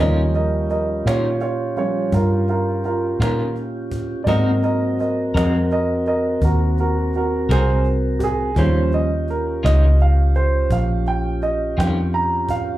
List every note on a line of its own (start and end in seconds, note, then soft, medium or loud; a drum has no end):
0.00 1.03 D#2 medium
0.00 0.20 D#3 medium
0.00 1.02 F3 soft
0.00 0.21 G3 medium
0.00 1.03 G3 soft
0.00 0.21 C#4 medium
0.00 1.03 C#4 soft
0.00 4.23 C#4 medium
0.00 4.23 F4 medium
0.00 0.21 F4 medium
0.00 4.23 G4 medium
0.00 0.33 A#4 medium
0.00 0.34 D#5 medium
0.34 0.68 A#4 soft
0.34 0.69 D#5 medium
0.34 cajon slap soft
0.70 1.04 A#4 soft
0.70 1.05 D#5 medium
0.70 cajon slap soft
1.06 2.10 A#2 medium
1.06 1.29 D#3 soft
1.06 1.29 G3 soft
1.06 1.28 C#4 medium
1.06 1.40 F4 medium
1.06 1.28 F4 medium
1.06 1.40 C#5 medium
1.06 cajon slap loud
1.40 1.75 F4 medium
1.40 1.77 C#5 medium
1.40 cajon slap soft
1.76 2.09 F3 soft
1.76 2.10 G3 soft
1.76 2.10 C#4 soft
1.76 2.11 F4 medium
1.76 2.13 C#5 medium
1.76 cajon slap soft
2.12 3.17 G2 medium
2.12 2.47 F4 medium
2.12 2.49 A#4 medium
2.12 cajon bass medium
2.12 cajon slap soft
2.48 2.83 F4 medium
2.48 2.84 A#4 medium
2.48 cajon slap soft
2.84 3.18 F4 medium
2.84 3.20 A#4 medium
2.84 cajon slap soft
3.20 4.24 A#2 medium
3.20 3.43 D#3 soft
3.20 3.43 G3 soft
3.20 3.43 C#4 medium
3.20 3.42 F4 medium
3.20 3.54 F4 medium
3.20 3.56 A#4 medium
3.20 cajon slap medium
3.56 cajon slap soft
3.92 cajon bass medium
4.24 5.31 G#2 medium
4.24 5.31 F#3 soft
4.24 4.49 G#3 medium
4.24 5.31 A#3 soft
4.24 8.52 C4 medium
4.24 4.49 C4 medium
4.24 8.52 F#4 medium
4.24 8.52 A#4 medium
4.24 4.61 A#4 medium
4.24 4.28 D5 medium
4.24 cajon bass medium
4.28 5.31 C4 soft
4.28 4.50 F#4 medium
4.28 4.50 A#4 medium
4.28 4.62 D#5 medium
4.63 4.97 A#4 medium
4.63 4.99 D#5 medium
4.63 cajon slap soft
4.99 5.33 A#4 soft
4.99 5.34 D#5 medium
4.99 cajon slap soft
5.01 cajon slap soft
5.34 6.39 F2 medium
5.34 5.57 G#3 soft
5.34 5.57 C4 medium
5.34 5.57 F#4 medium
5.34 5.56 A#4 medium
5.34 5.69 A#4 medium
5.34 5.70 D#5 medium
5.34 cajon slap loud
5.70 6.04 A#4 medium
5.70 6.06 D#5 medium
5.70 cajon slap soft
6.06 6.40 A#4 medium
6.06 6.42 D#5 medium
6.06 cajon slap soft
6.42 7.46 D#2 medium
6.42 6.76 F#4 medium
6.42 6.78 A#4 medium
6.42 cajon bass medium
6.77 7.12 F#4 medium
6.77 7.14 A#4 medium
6.77 cajon slap soft
7.13 7.48 F#4 medium
7.13 7.50 A#4 medium
7.13 cajon slap soft
7.49 8.53 C2 medium
7.49 7.71 G#3 medium
7.49 7.71 C4 soft
7.49 7.71 F#4 medium
7.49 7.84 G#4 medium
7.49 7.71 A#4 medium
7.49 7.85 C5 medium
7.49 cajon slap loud
7.85 cajon slap soft
8.19 8.23 G4 soft
8.19 cajon bass medium
8.24 8.57 G#4 medium
8.55 9.60 D#2 medium
8.55 8.78 D#3 medium
8.55 9.04 F3 soft
8.55 8.78 G3 medium
8.55 9.05 G3 soft
8.55 12.78 C#4 medium
8.55 8.78 C#4 medium
8.55 9.05 C#4 soft
8.55 12.78 F4 medium
8.55 8.79 F4 medium
8.55 12.78 G4 medium
8.55 8.92 C5 medium
8.55 cajon bass medium
8.92 9.28 D#5 medium
8.92 cajon slap soft
9.28 cajon slap soft
9.30 9.64 A#4 medium
9.30 cajon slap soft
9.63 10.68 C#2 medium
9.63 9.85 D#3 medium
9.63 9.85 G3 medium
9.63 9.85 C#4 medium
9.63 9.85 F4 medium
9.63 9.99 D#5 medium
9.63 cajon slap loud
9.99 10.35 F5 medium
9.99 cajon slap soft
10.35 10.70 C5 medium
10.35 cajon slap soft
10.70 11.74 A#1 medium
10.70 11.06 F5 medium
10.70 cajon bass medium
11.06 11.42 G5 medium
11.06 cajon slap soft
11.42 11.77 D#5 medium
11.42 cajon slap soft
11.77 12.78 F2 medium
11.77 11.99 D#3 soft
11.77 11.99 G3 medium
11.77 11.99 C#4 medium
11.77 11.99 F4 medium
11.77 12.13 G5 medium
11.77 cajon slap medium
12.13 12.48 A#5 medium
12.13 cajon slap soft
12.49 12.78 F5 medium
12.49 cajon bass medium